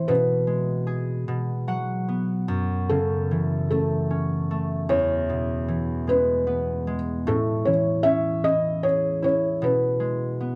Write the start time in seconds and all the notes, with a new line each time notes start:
Already playing: A2 E3 A3 C4 E4
0.08 B2 B4
0.47 G#3
0.87 G#4
1.28 B2
1.68 F#3 F#5
2.08 B3
2.48 F#2
2.89 C#3 A4
3.31 E3
3.70 A3 A4
4.11 C#4
4.51 A3
4.89 E2 C#5
5.29 B2
5.68 E3
6.07 G#3 B4
6.47 B3
6.87 G#3
7.27 A2 A4
7.65 E3 C#5
8.03 C#4 E5
8.44 E4 D#5
8.83 G#4 C#5
9.22 E4 C#5
9.62 B2 B4
10.00 G#3
10.41 B3